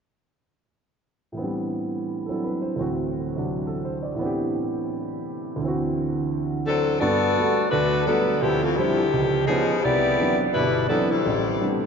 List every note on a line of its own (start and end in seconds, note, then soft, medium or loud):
1.32 2.76 A2 soft
1.32 2.77 E3 soft
1.37 2.78 B3 soft
1.37 2.28 C4 soft
1.37 2.29 D4 soft
1.43 2.81 G3 soft
2.26 2.78 F#3 soft
2.26 2.78 C4 soft
2.26 2.30 A4 soft
2.30 2.79 D4 soft
2.30 2.79 E4 soft
2.30 2.79 A4 soft
2.44 2.70 B4 soft
2.62 2.86 C5 soft
2.76 4.18 D2 soft
2.76 4.13 A2 soft
2.76 4.15 E3 soft
2.76 4.19 C4 soft
2.80 3.37 F#4 soft
3.36 4.19 C3 soft
3.36 4.20 F#3 soft
3.36 4.20 D4 soft
3.36 4.21 F#4 soft
3.67 3.91 A4 soft
3.85 4.11 C5 soft
4.03 4.27 D5 soft
4.14 5.58 A2 soft
4.14 5.59 E3 soft
4.19 5.60 B3 soft
4.19 5.61 C4 soft
4.19 5.62 D4 soft
4.25 5.63 G4 soft
5.56 6.99 D2 soft
5.56 7.01 D3 soft
5.62 7.02 E3 soft
5.62 7.03 C4 soft
5.67 7.05 F#4 medium
6.67 7.00 F#3 medium
6.67 7.00 C4 medium
6.67 7.00 D4 medium
6.67 6.99 A4 medium
7.00 7.32 G2 medium
7.00 7.68 B3 medium
7.00 7.32 B3 medium
7.00 7.68 F#4 medium
7.00 7.67 A4 medium
7.00 7.68 D5 medium
7.37 7.60 G3 soft
7.37 7.60 A3 soft
7.37 7.60 B3 soft
7.37 7.60 F#4 soft
7.71 8.02 D2 medium
7.71 8.07 A3 medium
7.71 8.06 D4 medium
7.71 8.07 F#4 medium
7.71 8.07 B4 medium
8.07 8.40 F#3 medium
8.07 8.30 G3 soft
8.07 8.30 A3 soft
8.07 8.30 B3 soft
8.07 8.40 B3 medium
8.07 8.40 D4 medium
8.07 8.31 F#4 soft
8.07 8.40 A4 medium
8.42 8.73 D2 medium
8.42 8.64 F3 medium
8.42 8.63 C4 medium
8.42 8.64 E4 medium
8.42 8.64 G4 medium
8.64 8.77 E3 medium
8.64 8.78 A3 medium
8.64 8.77 C4 medium
8.64 8.77 F4 medium
8.77 9.45 F3 medium
8.77 9.01 F3 soft
8.77 9.01 G3 soft
8.77 9.13 C4 medium
8.77 9.02 C4 soft
8.77 9.02 D4 soft
8.77 9.12 E4 medium
8.77 9.01 E4 soft
8.77 9.48 G4 medium
9.13 9.43 C#2 medium
9.47 9.80 F3 medium
9.47 9.71 F3 soft
9.47 9.80 B3 medium
9.47 9.71 B3 soft
9.47 9.72 C#4 soft
9.47 9.80 D#4 medium
9.47 9.72 D#4 medium
9.47 9.80 G#4 medium
9.83 10.14 C2 medium
9.83 10.40 B3 medium
9.83 10.40 E4 medium
9.83 10.40 G4 medium
9.83 10.41 D5 loud
10.19 10.42 E3 soft
10.19 10.42 F#3 soft
10.19 10.42 B3 soft
10.19 10.42 C4 soft
10.19 10.42 D4 soft
10.54 10.85 G1 medium
10.54 10.84 B2 medium
10.54 10.87 G3 medium
10.54 10.87 D4 medium
10.54 10.87 E4 medium
10.54 10.87 B4 medium
10.88 11.12 E3 soft
10.88 11.09 F#3 medium
10.88 11.12 F#3 soft
10.88 11.09 B3 medium
10.88 11.12 B3 soft
10.88 11.12 C4 soft
10.88 11.09 D4 medium
10.88 11.12 D4 soft
10.88 11.09 A4 medium
11.11 11.77 G3 medium
11.11 11.77 C4 medium
11.11 11.77 E4 medium
11.11 11.77 A4 medium
11.26 11.55 A1 medium
11.61 11.83 G3 soft
11.61 11.83 A3 soft
11.61 11.83 B3 soft
11.61 11.83 C4 soft
11.61 11.83 D4 soft